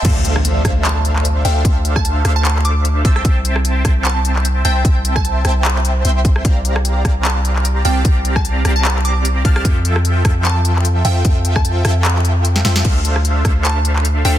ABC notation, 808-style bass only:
X:1
M:4/4
L:1/8
Q:"Swing 16ths" 1/4=150
K:Dm
V:1 name="808-style bass" clef=bass
D,,3 D,,4 D,, | D,,3 D,,4 z | C,,3 C,,4 C,, | C,,3 C,,3 C,,2 |
C,,3 C,,4 C,, | C,,3 C,,4 C,, | F,,3 F,,4 F,, | F,,3 F,,4 F,, |
D,,3 D,,4 D,, |]